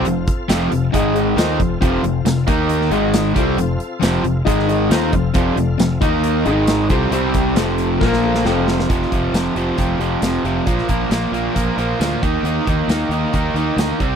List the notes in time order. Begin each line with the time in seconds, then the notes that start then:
Already playing: C4 F4 A4 C5 F5
0.05 F1 F2 C3, closed hi-hat
0.27 kick, closed hi-hat
0.49 F1 F2 C3 F3, snare, closed hi-hat, tambourine
0.71 F1 F2 C3, closed hi-hat
0.92 G#1 G#2 D#3 G#3 D#4 G#4 D#5, kick, closed hi-hat
1.13 D#4 G#4 D#5, closed hi-hat
1.36 D#2 D#3 A#3 C4 D#4 F4 A4 C5 F5, snare, closed hi-hat, tambourine
1.59 F1 F2 C3, kick, closed hi-hat
1.80 F1 F2 C3 F3 F4 A4 C5, kick, closed hi-hat
2.02 F1 F2 C3, closed hi-hat
2.25 F1 F2 C3, snare, closed hi-hat, tambourine
2.46 D#2 D#3 A#3 D#4 A#4 D#5, kick, closed hi-hat
2.69 closed hi-hat
2.81 snare
2.90 G#1 G#2 D#3 G#3 D#4 G#4 D#5, closed hi-hat
3.14 snare, closed hi-hat, tambourine
3.34 C2 C3 G3 C4 F4 A4 C5 F5, kick, closed hi-hat
3.57 F1 F2 C3, closed hi-hat
3.80 closed hi-hat
4.00 F1 F2 C3 F3, snare, closed hi-hat, tambourine
4.23 F1 F2 C3, closed hi-hat
4.45 G#1 G#2 D#3 G#3 D#4 G#4 D#5, kick, closed hi-hat
4.59 snare
4.67 D#4 G#4 D#5, closed hi-hat
4.90 D#2 D#3 A#3 C4 D#4 F4 A4 C5 F5, snare, closed hi-hat, tambourine
5.13 F1 F2 C3, kick, closed hi-hat
5.34 F1 F2 C3 F3 F4 A4 D5, kick, closed hi-hat
5.56 F1 F2 C3, closed hi-hat
5.78 F1 F2 C3, snare, closed hi-hat, tambourine
6.00 D#2 D#3 A#3 D#4 A#4 D#5, kick, closed hi-hat
6.24 closed hi-hat
6.45 G#1 G#2 D#3 G#3 D#4 G#4 D#5, closed hi-hat
6.67 snare, closed hi-hat, tambourine
6.89 C2 C3 G3 C4 F4 A4 C5, kick, closed hi-hat
7.11 C2 C3 G3 C4 G4 C5, closed hi-hat
7.34 kick, closed hi-hat
7.55 F1 F2 C3 F3 A3 C4 F4 A4 C5, snare, closed hi-hat, tambourine
7.78 closed hi-hat
8.00 A#1 A#2 F3 A#3 F4 A#4, kick, snare
8.13 snare
8.23 A#3 F4 A4 A#5
8.35 snare
8.45 F1 F2 C3 F3 A3 C4 F4 A4 C5 G5, snare
8.68 F5, snare
8.79 snare
8.89 F1 F2 C3 F3, kick, closed hi-hat
9.02 snare
9.11 F1 F2 C3 F3, kick, closed hi-hat
9.32 F1 F2 C3 F3, snare, closed hi-hat, tambourine
9.55 F1 F2 C3 F3, closed hi-hat
9.78 F1 F2 C3 F3, kick, closed hi-hat
9.99 F1 F2 C3 F3, closed hi-hat
10.22 F1 F2 C3 F3, snare, closed hi-hat, tambourine
10.44 F1 F2 C3 F3, closed hi-hat
10.66 A#1 A#2 F3 A#3, kick, closed hi-hat
10.78 snare
10.89 A#1 A#2 F3 A#3, kick, closed hi-hat
11.10 A#1 A#2 F3 A#3, snare, closed hi-hat, tambourine
11.32 A#1 A#2 F3 A#3, closed hi-hat
11.54 A#1 A#2 F3 A#3, kick, closed hi-hat
11.77 A#1 A#2 F3 A#3, closed hi-hat
12.00 D2 A#2 F3 A#3, snare, closed hi-hat, tambourine
12.23 D#2 D#3 A#3 D#4, kick, closed hi-hat
12.43 D#2 D#3 A#3 D#4, closed hi-hat
12.66 D#2 D#3 A#3 D#4, kick, closed hi-hat
12.88 D#2 D#3 A#3 D#4, snare, closed hi-hat, tambourine
13.09 D#2 D#3 A#3 D#4, closed hi-hat
13.33 D#2 D#3 A#3 D#4, kick, closed hi-hat
13.54 D#2 D#3 A#3 D#4, closed hi-hat
13.76 D2 D#3 A#3 D#4, snare, closed hi-hat, tambourine
14.00 C2 C3 G3 C4, kick, closed hi-hat